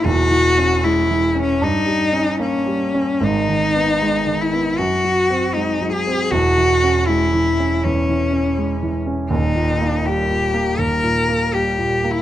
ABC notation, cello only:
X:1
M:4/4
L:1/16
Q:1/4=78
K:C#dor
V:1 name="Cello"
F4 E3 C D4 C4 | D6 E2 F4 D2 G2 | F4 E4 C6 z2 | D4 =G4 A4 G3 E |]